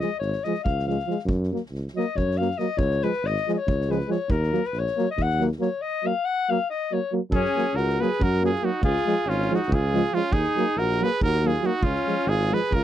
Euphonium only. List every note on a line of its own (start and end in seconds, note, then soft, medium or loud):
0.46 0.54 F3 medium
0.86 0.95 F3 soft
1.06 1.14 F3 medium
1.51 1.59 F#3 soft
1.95 2.03 F#3 medium
2.40 2.48 F#3 medium
2.59 2.67 F#3 medium
3.03 3.11 F3 medium
3.48 3.56 F3 medium
3.90 3.98 F3 medium
4.09 4.17 F3 medium
4.52 4.61 F#3 medium
4.98 5.06 F#3 medium
5.39 5.48 F#3 medium
5.60 5.68 F#3 medium
6.04 6.12 F#3 medium
6.50 6.58 F#3 medium
6.92 7.00 F#3 medium
7.12 7.20 F#3 medium
7.57 7.65 F#3 soft
8.02 8.10 F#3 medium
8.43 8.51 F#3 medium
8.63 8.71 F#3 medium
9.07 9.15 F3 medium
9.51 9.59 F3 medium
9.93 10.01 F3 medium
10.12 10.20 F3 medium
10.56 10.64 F#3 medium
11.00 11.08 F#3 medium
11.44 11.52 F#3 medium
11.61 11.69 F#3 medium
12.07 12.15 F3 medium
12.51 12.60 F3 medium